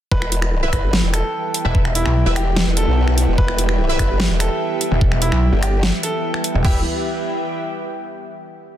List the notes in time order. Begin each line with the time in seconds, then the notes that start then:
0.12 E1 E3 G3 B3 E4 G4 B4, kick
0.22 finger snap
0.30 G5, closed hi-hat
0.42 finger snap
0.55 B4
0.63 E4 B4 E5
0.73 G1 B4, finger snap, kick, closed hi-hat
0.93 snare
1.04 E1
1.13 A4 E5, finger snap, closed hi-hat
1.54 closed hi-hat
1.65 E1 E4 B4 E5
1.75 kick
1.85 finger snap
1.95 E4, closed hi-hat
2.06 B1, finger snap
2.26 E1 E4 B4 E5
2.36 G4, finger snap, closed hi-hat
2.56 snare
2.67 E1
2.77 A4, closed hi-hat
2.87 B1
3.08 finger snap
3.18 closed hi-hat
3.28 E1
3.38 E1 B4, kick
3.48 finger snap
3.58 closed hi-hat
3.69 finger snap
3.89 E4 B4 E5
3.99 G1 B4, finger snap, kick, closed hi-hat
4.20 snare
4.30 E1
4.40 A4, finger snap, closed hi-hat
4.81 closed hi-hat
4.91 E1
5.01 kick
5.12 finger snap
5.22 E4, closed hi-hat
5.32 B1, finger snap
5.52 G1
5.63 G4, finger snap, closed hi-hat
5.83 snare
6.03 A4, closed hi-hat
6.34 finger snap
6.44 closed hi-hat
6.54 E1
6.65 E1 E4 G4 B4 E5, kick, floor tom, crash
6.71 B4
6.77 E5
6.83 G5